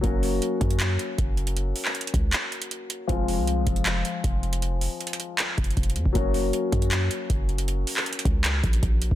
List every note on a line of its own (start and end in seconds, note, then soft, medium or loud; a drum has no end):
0.01 0.40 F#1 loud
0.01 3.04 F#3 medium
0.01 3.05 A#3 medium
0.01 3.05 C#4 medium
0.01 kick loud
0.01 closed hi-hat medium
0.05 3.06 F#4 medium
0.23 open hi-hat medium
0.42 closed hi-hat medium
0.61 0.98 F#2 loud
0.61 kick medium
0.61 closed hi-hat medium
0.71 closed hi-hat medium
0.80 clap loud
0.80 closed hi-hat medium
0.99 closed hi-hat medium
1.18 1.73 F#1 loud
1.18 kick loud
1.18 closed hi-hat medium
1.37 closed hi-hat soft
1.47 closed hi-hat medium
1.57 closed hi-hat medium
1.76 open hi-hat medium
1.85 clap medium
1.95 closed hi-hat medium
2.01 closed hi-hat medium
2.07 closed hi-hat medium
2.14 2.32 C#2 loud
2.14 kick loud
2.14 closed hi-hat medium
2.33 clap loud
2.33 closed hi-hat medium
2.52 closed hi-hat soft
2.62 closed hi-hat medium
2.71 closed hi-hat medium
2.90 closed hi-hat medium
3.07 3.39 F1 loud
3.07 6.10 F3 medium
3.07 6.11 G#3 medium
3.07 6.11 C4 medium
3.07 kick loud
3.07 closed hi-hat medium
3.11 6.12 F4 medium
3.28 open hi-hat medium
3.38 3.65 C2 loud
3.47 closed hi-hat medium
3.67 4.03 F1 loud
3.67 kick loud
3.67 closed hi-hat medium
3.76 closed hi-hat medium
3.86 clap loud
3.86 closed hi-hat medium
4.05 closed hi-hat medium
4.24 4.88 F1 loud
4.24 kick medium
4.24 closed hi-hat medium
4.43 closed hi-hat soft
4.53 closed hi-hat medium
4.62 closed hi-hat medium
4.81 open hi-hat medium
5.01 closed hi-hat soft
5.07 closed hi-hat medium
5.13 closed hi-hat medium
5.20 closed hi-hat medium
5.39 clap loud
5.39 closed hi-hat medium
5.58 5.76 F1 loud
5.58 kick loud
5.58 closed hi-hat soft
5.64 closed hi-hat medium
5.71 closed hi-hat medium
5.77 5.97 F1 loud
5.77 kick loud
5.77 closed hi-hat medium
5.83 closed hi-hat medium
5.90 closed hi-hat medium
5.96 6.05 F2 loud
5.96 closed hi-hat medium
6.06 6.14 F1 loud
6.06 kick loud
6.13 6.52 F#1 loud
6.13 9.15 F#3 medium
6.13 9.15 A#3 medium
6.13 9.15 C#4 medium
6.13 kick loud
6.13 closed hi-hat medium
6.17 9.15 F#4 medium
6.34 open hi-hat medium
6.53 closed hi-hat medium
6.72 7.09 F#2 loud
6.72 kick loud
6.72 closed hi-hat medium
6.82 closed hi-hat medium
6.91 clap loud
6.91 closed hi-hat medium
7.11 closed hi-hat medium
7.30 7.85 F#1 loud
7.30 kick loud
7.30 closed hi-hat medium
7.49 closed hi-hat soft
7.58 closed hi-hat medium
7.68 closed hi-hat medium
7.87 open hi-hat medium
7.97 clap medium
8.06 closed hi-hat medium
8.13 closed hi-hat medium
8.19 closed hi-hat medium
8.25 8.62 C#2 loud
8.25 kick loud
8.25 closed hi-hat medium
8.44 clap loud
8.44 closed hi-hat medium
8.64 8.82 A#1 loud
8.64 kick medium
8.64 closed hi-hat soft
8.73 closed hi-hat medium
8.83 9.10 A#1 loud
8.83 kick loud
8.83 closed hi-hat medium
9.02 closed hi-hat medium
9.11 9.15 F#1 loud
9.11 kick loud